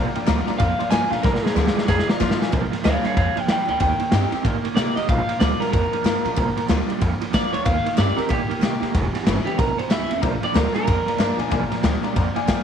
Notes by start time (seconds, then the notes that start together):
Already playing: A#2 F3 F5
0.15 A#2 F3 D5 F5 G5, muted upright bass stroke, ride
0.26 D2 A#2 F3 G3 A#3 D4 F4 D5 F5 A#5, snare, ride
0.47 A#2 G3 D4 F4 D5 F5 A#5, muted upright bass stroke, snare, ride
0.58 F2 A#2 F3 D5 F5 A#5, kick, ride
0.79 A#2 F3 D5 F5 C6, muted upright bass stroke, ride
0.90 G2 A#2 F3 A#3 D4 F4 D5 F5 G#5 A#5, snare, ride
1.10 A#2 F3 D4 F4 D5 F5 A#5, snare, ride
1.23 A#1 A#2 F3 A#4 D5 F5 A#5, kick, snare
1.35 snare
1.43 A#2 F3 G#4 D5 F5 A#5, muted upright bass stroke, snare
1.55 D2 A#2 F3 G3 A#3 D4 F4 D5 F5 C6, snare
1.67 snare
1.75 A#2 G3 D4 F4 D5 F5 A#5, muted upright bass stroke, snare
1.87 F2 A#2 F3 G#4 D5 F5 A#5, kick, snare
1.99 snare
2.08 A#2 F3 F4 D5 F5 A#5, muted upright bass stroke, snare
2.20 G2 A#2 F3 A#3 D4 F4 D5 F5 C6, kick, snare
2.31 snare
2.39 A#2 F3 D4 F4 D5 F5 G#5, snare
2.52 A#1 A#2 F3, kick, snare, ride
2.72 A#2 F3, muted upright bass stroke, snare, ride
2.84 D2 A#2 F3 G3 A#3 D4 F4 C#5 F5, snare, ride
3.03 A#2 G3 D4 F4 C#5 F5, muted upright bass stroke, snare, ride
3.16 F2 A#2 C3 F3 C#5 F5, kick, ride
3.36 A#2 F3 D5 G5, muted upright bass stroke, ride
3.48 G2 A#2 D3 F3 D5 G5, snare, ride
3.68 D2 A#2 F3 D5 G5, ride
3.80 D#2 D#3 A#3 G5, kick, ride
4.00 D#3 A#3, muted upright bass stroke, ride
4.12 G2 D#3 A#3 C4 D#4 G4, snare, ride
4.32 D#3 C4 D#4 G4, muted upright bass stroke, ride
4.45 A#2 D#3 A#3, kick, ride
4.64 D#3 A#3, muted upright bass stroke, ride
4.76 C3 D#3 A#3 D#4 G4 D5, snare, ride
4.96 D#3 A#3 D#4 G4 D#5, snare, ride
5.09 A#1 A#2 F3 F5, kick, ride
5.28 A#2 F3, muted upright bass stroke, ride
5.40 D2 A#2 F3 G3 A#3 D4 F4 D5, snare, ride
5.60 A#2 G3 A#4, muted upright bass stroke, snare, ride
5.72 F2 A#2 F3 A#4, kick, ride
5.92 A#2 F3, muted upright bass stroke, ride
6.04 G2 A#2 F3 A#3 D4 F4, snare, ride
6.25 A#2 F3 D4 F4, ride
6.36 A#1 A#2 F3, kick, ride
6.57 A#2 F3, muted upright bass stroke, ride
6.68 D2 A#2 F3 G3 A#3 D4 F4, snare, ride
6.89 A#2 G3 D4 F4, muted upright bass stroke, ride
7.01 F2 A#2 F3, kick, ride
7.21 A#2 F3, muted upright bass stroke, ride
7.33 G2 A#2 F3 A#3 D4 F4 D5, kick, snare, ride
7.53 D2 A#2 F3 D4 F4 C#5, ride
7.65 D#2 D#3 A#3 F5, kick, ride
7.86 D#3 A#3, muted upright bass stroke, ride
7.97 G2 D#3 A#3 C4 D#4 G4 D5, snare, ride
8.17 D#3 C4 D#4 G4 A#4, muted upright bass stroke, snare, ride
8.29 A#2 D#3 A#3 G4, kick, ride
8.50 D#3 A#3, muted upright bass stroke, ride
8.61 C3 D#3 A#3 D#4 G4, snare, ride
8.82 D#3 A#3, snare, ride
8.95 E1 E2 B2, kick, snare, ride
9.14 E2 B2, muted upright bass stroke, snare, ride
9.26 G1 E2 C#3 E3 G3 C#4 E4, snare, ride
9.45 E2 C#3 G4, muted upright bass stroke, ride
9.58 A#1 E2 A#2 B2 A#4, kick, ride
9.77 E2 B2 C5, muted upright bass stroke, ride
9.90 C#2 E2 B2 E3 G3 C#4 E4 E5, snare, ride
10.11 E2 B2 C#4 E4, ride
10.21 A#1 A#2 F3 D5 F5 A#5, kick, ride
10.43 A#2 F3 D5 F5 G5, muted upright bass stroke, ride
10.54 D2 A#2 F3 G3 A#3 D4 F4 A#4 D5 F5 A#5, snare, ride
10.74 A#2 G3 D4 F4 A#4 D5 F5 G#5, muted upright bass stroke, snare, ride
10.87 F2 A#2 F3 D5 F5 A#5, kick, ride
11.06 A#2 F3 D5 F5 A#5, muted upright bass stroke, ride
11.18 G2 A#2 F3 A#3 D4 F4 D5 F5 A#5, snare, ride
11.38 A#2 F3 D4 F4 D5 F5 G#5, ride
11.50 A#1 A#2 F3 D5 F5 G#5, kick, ride
11.70 A#2 F3 D5 F5 A#5, muted upright bass stroke, snare, ride
11.83 D2 A#2 F3 G3 A#3 D4 F4 D5 F5 G5, snare, ride
12.03 A#2 G3 D4 F4 D5 F5 A#5, muted upright bass stroke, ride
12.16 F2 A#2 F3 D5 F5 A#5, kick, ride
12.36 A#2 F3 D5 F5 G#5, muted upright bass stroke, ride
12.47 G2 A#2 F3 A#3 D4 F4 D5 F5 G5 G#5, kick, snare, ride